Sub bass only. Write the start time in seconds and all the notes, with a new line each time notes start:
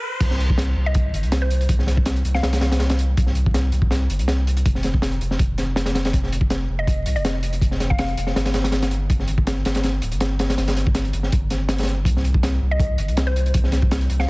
0.21 C2
0.76 C2
1.14 G1
1.23 C2
1.69 C2
2.25 C2
2.43 C2
3.18 C2
3.73 C2
4.10 G1
4.20 C2
4.66 F1
5.21 F1
5.39 F1
6.13 F1
6.69 F1
7.06 C2
7.16 F1
7.61 F1
8.17 F1
8.36 G1
9.10 G1
9.65 G1
10.02 D1
10.12 G1
10.58 G1
11.14 G1
11.33 G1
12.05 C2
12.62 C2
12.99 G1
13.08 C2
13.55 C2
14.10 C2